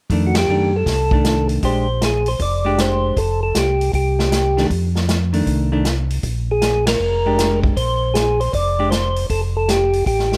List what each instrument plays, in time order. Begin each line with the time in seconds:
0.10 tonewheel organ F2, hollow-body jazz guitar D#3 A3 D4, kick, open hi-hat
0.27 tonewheel organ F#4
0.35 tonewheel organ G4, snare, ride
0.48 tonewheel organ F#2, hollow-body jazz guitar D#3 A3 D4
0.76 tonewheel organ A4
0.86 tonewheel organ C2, kick, snare, open hi-hat
1.11 hollow-body jazz guitar D#3 A3 D4, kick
1.24 snare, closed hi-hat
1.49 open hi-hat
1.63 tonewheel organ A#1 C5, hollow-body jazz guitar G#3 D4 G4, kick, open hi-hat
2.02 tonewheel organ G#4, snare, closed hi-hat
2.26 tonewheel organ C5, open hi-hat
2.39 tonewheel organ F1 D5, kick, open hi-hat
2.65 hollow-body jazz guitar G#3 D4 G4
2.78 tonewheel organ C5, snare, closed hi-hat
3.17 tonewheel organ F1 A4, kick, open hi-hat
3.43 tonewheel organ A4
3.55 tonewheel organ C2 G4, snare, closed hi-hat
3.81 open hi-hat
3.93 tonewheel organ C2 G4, kick, open hi-hat
4.19 snare
4.32 snare, closed hi-hat
4.57 hollow-body jazz guitar D#3 A3 D4, snare
4.70 tonewheel organ F2, kick, open hi-hat
4.95 snare
5.09 snare, closed hi-hat
5.33 hollow-body jazz guitar D#3 A3 D4, open hi-hat
5.46 tonewheel organ C2, kick, open hi-hat
5.72 hollow-body jazz guitar D#3 A3 D4
5.85 snare, closed hi-hat
6.10 open hi-hat
6.23 tonewheel organ A#1, kick, open hi-hat
6.51 tonewheel organ G#4
6.62 snare, closed hi-hat
6.87 tonewheel organ A#4, snare, ride
7.00 tonewheel organ F1
7.26 hollow-body jazz guitar G#3 D4 G4
7.38 snare, closed hi-hat
7.64 kick
7.76 tonewheel organ A#1 C5, kick, open hi-hat
8.14 tonewheel organ G#4, snare, closed hi-hat
8.40 tonewheel organ C5, open hi-hat
8.53 tonewheel organ F1 D5, kick, open hi-hat
8.79 hollow-body jazz guitar G#3 D4 G4
8.91 tonewheel organ C5, snare, closed hi-hat
9.16 open hi-hat
9.30 tonewheel organ F1 A4, kick, open hi-hat
9.57 tonewheel organ A4
9.69 tonewheel organ G4, snare, closed hi-hat
9.93 open hi-hat
10.06 tonewheel organ A1 G4, kick, open hi-hat
10.19 snare
10.32 snare